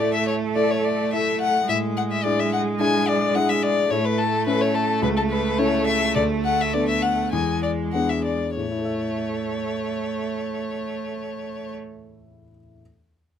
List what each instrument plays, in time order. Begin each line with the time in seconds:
Already playing: grand piano A2, cello A3
0.00 grand piano A3 E4 A4, violin D5
0.14 violin E5
0.27 violin C#5
0.55 grand piano A3 E4 A4, violin D5
0.70 violin C#5
0.84 violin D5
1.13 grand piano A3 E4 A4, violin E5
1.41 violin F#5
1.69 grand piano A2, cello G#3, violin E5
1.97 violin F#5
2.12 violin E5
2.24 grand piano D4 E4 G#4, violin D5
2.40 violin E5
2.53 violin F#5
2.80 grand piano D4 E4 G#4, violin G#5
3.08 violin D5
3.35 grand piano D4 E4 G#4, violin F#5
3.49 violin E5
3.63 violin D5
3.91 grand piano A2, cello A3, violin C#5
4.05 violin B4
4.18 violin A4
4.47 grand piano C#4 E4 A4, violin B4
4.61 violin C#5
4.75 violin A4
5.02 grand piano C#2, violin B4
5.17 violin A4
5.30 violin B4
5.58 grand piano C#4 E4 A4, violin C#5
5.87 violin E5
6.15 grand piano D2, violin D5
6.45 violin F#5
6.61 violin E5
6.74 grand piano B3 D4 A4, violin D5
6.88 violin E5
7.02 violin F#5
7.32 grand piano E2, cello G#3, violin G#5
7.63 violin D5
7.93 grand piano B3 D4 G#4, violin F#5
8.09 violin E5
8.24 violin D5
8.56 grand piano A2, cello A3, violin C#5
8.64 grand piano A3
8.71 grand piano E4
8.78 grand piano A4
8.85 grand piano E5